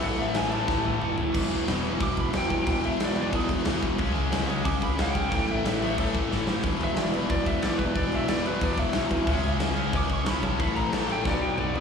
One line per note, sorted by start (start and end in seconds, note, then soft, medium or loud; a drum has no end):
0.00 0.17 A1 loud
0.00 0.49 A2 medium
0.00 0.17 A2 medium
0.00 0.50 E3 loud
0.00 0.18 E3 medium
0.00 0.49 A3 loud
0.00 0.19 A3 loud
0.00 0.18 F#5 loud
0.00 crash medium
0.17 0.33 A1 loud
0.17 0.36 A2 medium
0.17 0.35 E3 medium
0.17 0.35 A3 loud
0.17 0.35 E5 medium
0.17 crash medium
0.33 0.65 A1 loud
0.33 0.50 A2 medium
0.33 0.51 E3 medium
0.33 0.51 A3 medium
0.33 0.51 G#5 loud
0.33 snare loud
0.33 crash medium
0.51 0.69 A2 medium
0.51 0.68 E3 medium
0.51 0.67 A3 medium
0.51 1.17 A5 loud
0.51 crash medium
0.68 0.99 A1 medium
0.68 0.83 A2 medium
0.68 0.84 E3 medium
0.68 0.85 A3 loud
0.68 kick loud
0.68 snare medium
0.84 1.01 A2 medium
0.84 1.01 E3 medium
0.84 0.99 A3 medium
0.84 high tom medium
1.01 1.32 F#1 loud
1.01 1.16 A2 medium
1.01 1.16 E3 medium
1.01 1.17 A3 medium
1.01 mid tom loud
1.17 1.33 A2 medium
1.17 1.33 E3 medium
1.17 1.33 A3 medium
1.17 floor tom loud
1.34 1.50 E1 loud
1.34 1.66 E2 loud
1.34 1.66 B2 loud
1.34 1.67 E3 loud
1.34 kick loud
1.34 crash loud
1.34 crash medium
1.50 1.66 E1 loud
1.50 crash medium
1.67 1.98 E1 loud
1.67 1.84 E2 medium
1.67 1.82 B2 medium
1.67 1.82 E3 medium
1.67 snare loud
1.67 crash medium
1.83 1.97 E2 medium
1.83 1.98 B2 medium
1.83 1.99 E3 medium
1.83 crash medium
1.98 2.16 E1 loud
1.98 2.30 E2 loud
1.98 2.31 B2 loud
1.98 2.33 E3 loud
1.98 kick loud
1.98 crash medium
2.03 2.18 D6 loud
2.17 2.33 E1 medium
2.17 2.35 B5 medium
2.17 kick medium
2.17 crash medium
2.31 2.65 E1 loud
2.31 2.50 E2 medium
2.31 2.49 B2 medium
2.31 2.49 E3 loud
2.31 snare loud
2.31 crash medium
2.37 2.67 G5 loud
2.49 2.64 E2 medium
2.49 2.65 B2 medium
2.49 2.66 E3 loud
2.49 kick medium
2.49 crash medium
2.65 2.98 E1 loud
2.65 2.97 E2 loud
2.65 2.98 B2 loud
2.65 3.00 E3 loud
2.65 2.84 G5 loud
2.65 kick loud
2.65 crash medium
2.84 3.00 E5 medium
2.84 crash medium
2.99 3.31 E1 loud
2.99 3.16 E2 medium
2.99 3.16 B2 loud
2.99 3.15 E3 loud
2.99 snare loud
2.99 crash medium
3.04 3.18 D5 medium
3.16 3.30 E2 medium
3.16 3.32 B2 medium
3.16 3.33 E3 loud
3.16 crash medium
3.21 3.35 D5 medium
3.32 3.64 E2 loud
3.32 3.48 E2 medium
3.32 3.65 B2 loud
3.32 3.67 E3 loud
3.32 3.50 G#4 loud
3.32 kick loud
3.32 crash loud
3.49 3.64 E1 medium
3.49 kick medium
3.49 crash medium
3.64 3.81 E1 loud
3.64 3.83 E2 loud
3.64 3.82 B2 loud
3.64 3.82 E3 loud
3.64 snare loud
3.64 crash medium
3.82 3.98 E1 loud
3.82 3.99 E2 medium
3.82 3.98 B2 medium
3.82 3.98 E3 medium
3.82 kick loud
3.82 crash medium
3.98 4.15 C#2 loud
3.98 4.29 C#3 medium
3.98 4.30 G#3 loud
3.98 4.31 C#4 loud
3.98 kick loud
3.98 crash medium
4.15 4.31 C#2 medium
4.15 crash medium
4.30 4.63 C#2 loud
4.30 4.47 C#3 loud
4.30 4.47 G#3 medium
4.30 4.46 C#4 loud
4.30 snare loud
4.30 crash medium
4.47 4.62 C#3 medium
4.47 4.63 G#3 medium
4.47 4.63 C#4 loud
4.47 crash medium
4.63 4.81 C#2 loud
4.63 4.95 C#3 loud
4.63 4.97 G#3 loud
4.63 4.97 C#4 loud
4.63 4.81 D6 loud
4.63 kick loud
4.63 crash medium
4.82 4.98 C#2 medium
4.82 4.98 B5 medium
4.82 kick medium
4.82 crash medium
4.97 5.30 C#2 loud
4.97 5.16 C#3 medium
4.97 5.16 G#3 medium
4.97 5.14 C#4 loud
4.97 snare loud
4.97 crash medium
5.02 5.32 G5 loud
5.15 5.29 C#3 medium
5.15 5.30 G#3 medium
5.15 5.31 C#4 medium
5.15 kick loud
5.15 crash medium
5.30 5.63 A1 loud
5.30 5.63 A2 medium
5.30 5.65 E3 medium
5.30 5.65 A3 loud
5.30 kick loud
5.30 crash medium
5.36 5.50 G5 loud
5.48 5.66 E5 loud
5.48 crash medium
5.64 5.96 A1 loud
5.64 5.83 A2 loud
5.64 5.82 E3 loud
5.64 5.81 A3 loud
5.64 5.82 E5 medium
5.64 snare loud
5.64 crash medium
5.82 5.97 A2 medium
5.82 5.98 E3 medium
5.82 5.98 A3 medium
5.82 5.99 E5 loud
5.82 crash medium
5.98 6.13 A2 medium
5.98 6.29 A2 medium
5.98 6.31 E3 loud
5.98 6.30 A3 loud
5.98 6.15 A4 loud
5.98 kick loud
5.98 crash loud
6.15 6.29 A1 medium
6.15 kick loud
6.15 crash medium
6.30 6.45 A1 loud
6.30 6.48 A2 medium
6.30 6.49 E3 medium
6.30 6.47 A3 loud
6.30 snare medium
6.46 6.62 F#1 loud
6.46 6.65 E3 medium
6.46 6.63 A3 loud
6.46 snare loud
6.50 6.64 A2 medium
6.63 6.78 E1 loud
6.63 6.96 E2 medium
6.63 6.96 B2 loud
6.63 6.98 E3 loud
6.63 kick loud
6.63 crash medium
6.79 6.95 E1 loud
6.79 crash medium
6.84 6.99 E5 loud
6.96 7.27 E1 loud
6.96 7.14 E2 medium
6.96 7.13 B2 medium
6.96 7.13 E3 medium
6.96 7.15 D5 medium
6.96 snare loud
6.96 crash medium
7.13 7.28 E2 medium
7.13 7.29 B2 medium
7.13 7.31 E3 medium
7.13 7.30 B4 medium
7.13 crash medium
7.29 7.45 E1 medium
7.29 7.61 E2 loud
7.29 7.63 B2 loud
7.29 7.64 E3 loud
7.29 7.46 D5 loud
7.29 kick loud
7.29 crash medium
7.46 7.62 E1 medium
7.46 7.62 E5 loud
7.46 kick medium
7.46 crash medium
7.62 7.94 E1 loud
7.62 7.80 E2 medium
7.62 7.79 B2 loud
7.62 7.79 E3 loud
7.62 7.78 D5 loud
7.62 snare loud
7.62 crash medium
7.78 7.96 E2 medium
7.78 7.97 B2 medium
7.78 7.98 E3 loud
7.78 7.95 B4 loud
7.78 kick medium
7.78 crash medium
7.93 8.26 E1 loud
7.93 8.43 E2 medium
7.93 8.14 D5 loud
7.93 kick loud
7.93 crash medium
7.97 8.27 E2 loud
7.97 8.27 B2 loud
7.97 8.29 E3 loud
8.12 8.29 E5 loud
8.12 crash medium
8.27 8.59 E1 loud
8.27 8.46 E2 medium
8.27 8.45 B2 medium
8.27 8.45 E3 loud
8.27 8.44 D5 medium
8.27 snare loud
8.27 crash medium
8.45 8.60 E2 medium
8.45 8.61 B2 medium
8.45 8.63 E3 loud
8.45 8.63 B4 loud
8.45 crash medium
8.61 8.91 E2 loud
8.61 8.77 E2 medium
8.61 8.92 B2 loud
8.61 8.94 E3 loud
8.61 8.79 D5 loud
8.61 kick loud
8.61 crash medium
8.77 8.93 E1 medium
8.77 9.74 E5 loud
8.77 kick loud
8.77 crash medium
8.92 9.10 E1 loud
8.92 9.10 E2 medium
8.92 9.10 B2 medium
8.92 9.10 E3 loud
8.92 snare loud
8.92 crash medium
9.10 9.26 C2 loud
9.10 9.27 E2 medium
9.10 9.26 B2 medium
9.10 9.26 E3 medium
9.10 kick medium
9.10 crash medium
9.27 9.43 C#2 loud
9.27 9.58 C#3 medium
9.27 9.59 G#3 loud
9.27 9.60 C#4 loud
9.27 kick loud
9.27 crash medium
9.43 9.60 C#2 loud
9.43 crash medium
9.59 9.92 C#2 loud
9.59 9.76 C#3 medium
9.59 9.75 G#3 medium
9.59 9.74 C#4 loud
9.59 snare loud
9.59 crash medium
9.75 9.90 C#3 medium
9.75 9.91 G#3 medium
9.75 9.92 C#4 loud
9.75 crash medium
9.91 10.09 C#2 loud
9.91 10.24 C#3 loud
9.91 10.25 G#3 loud
9.91 10.25 C#4 loud
9.91 kick loud
9.91 crash medium
9.97 10.11 D6 loud
10.09 10.25 C#2 medium
10.09 kick medium
10.09 crash medium
10.13 10.27 C#6 loud
10.25 10.57 B1 loud
10.25 10.44 C#3 loud
10.25 10.43 G#3 loud
10.25 10.42 C#4 loud
10.25 10.44 B5 loud
10.25 snare loud
10.25 crash medium
10.43 10.58 C#3 medium
10.43 10.59 G#3 medium
10.43 10.58 C#4 medium
10.43 10.59 A5 medium
10.43 kick medium
10.43 crash medium
10.59 10.91 A1 loud
10.59 10.91 A2 medium
10.59 10.91 E3 loud
10.59 10.93 A3 loud
10.59 10.75 B5 loud
10.59 kick loud
10.59 crash medium
10.76 10.93 A#5 medium
10.76 crash medium
10.91 11.23 A1 loud
10.91 11.08 A2 medium
10.91 11.08 E3 medium
10.91 11.06 A3 loud
10.91 11.08 A5 medium
10.91 snare loud
10.91 crash medium
11.08 11.24 A2 medium
11.08 11.24 E3 medium
11.08 11.23 A3 medium
11.08 crash medium
11.12 11.26 G5 loud
11.25 11.39 B1 loud
11.25 11.56 B2 loud
11.25 11.57 F#3 loud
11.25 11.57 B3 loud
11.25 11.42 D5 loud
11.25 kick loud
11.25 snare medium
11.40 11.56 B1 medium
11.40 11.57 G5 loud
11.57 11.73 B1 loud
11.57 11.74 B2 medium
11.57 11.73 F#3 loud
11.57 11.72 B3 loud
11.57 11.75 D5 loud
11.57 mid tom loud
11.74 11.80 B1 loud
11.74 11.80 B2 medium
11.74 11.80 F#3 medium
11.74 11.80 B3 loud
11.74 11.80 G#4 loud
11.74 floor tom loud